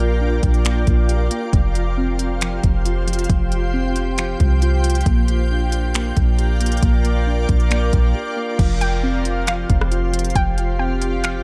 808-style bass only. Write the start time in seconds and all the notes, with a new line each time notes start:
Already playing: A#1
0.43 A#1
0.87 A#1
1.53 F1
2.64 F1
3.30 F1
4.40 C2
5.06 A#1
6.17 A#1
6.83 A#1
7.49 A#1
7.93 A#1
8.59 F1
9.70 F1
10.35 F1